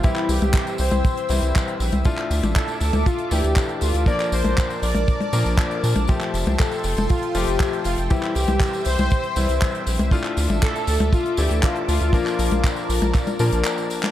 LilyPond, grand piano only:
\new Staff \with { instrumentName = "Grand piano" } { \time 4/4 \key d \minor \tempo 4 = 119 <e g c' g'>2~ <e g c' g'>8 <e g c' e'>4. | <a d' e' f'>2~ <a d' e' f'>8 <e a d' e'>4. | <f bes d' bes'>2~ <f bes d' bes'>8 <f bes d' bes'>4. | <f a c' g'>2~ <f a c' g'>8 <f a c' f'>4. |
<e g c' g'>2~ <e g c' g'>8 <e g c' e'>4. | <a d' e' f'>2~ <a d' e' f'>8 <e a d' e'>4. | <f bes d' bes'>2~ <f bes d' bes'>8 <f bes d' bes'>4. | }